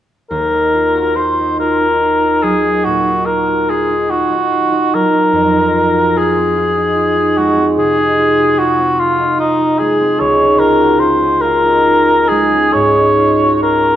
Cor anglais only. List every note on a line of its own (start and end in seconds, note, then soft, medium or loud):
0.30 1.17 A#4 medium
1.16 1.59 C5 medium
1.60 2.45 A#4 medium
2.43 2.86 G#4 medium
2.85 3.27 F#4 medium
3.26 3.71 A#4 soft
3.70 4.12 G#4 soft
4.10 4.96 F#4 medium
4.95 6.19 A#4 medium
6.17 7.39 G#4 soft
7.37 7.66 F#4 medium
7.78 8.60 G#4 medium
8.58 9.01 F#4 medium
9.00 9.39 F4 medium
9.40 9.80 D#4 medium
9.79 10.21 G#4 medium
10.20 10.60 C#5 medium
10.59 11.01 A#4 medium
10.99 11.42 C5 medium
11.41 12.30 A#4 medium
12.28 12.75 G#4 medium
12.73 13.62 C#5 medium
13.62 13.96 A#4 medium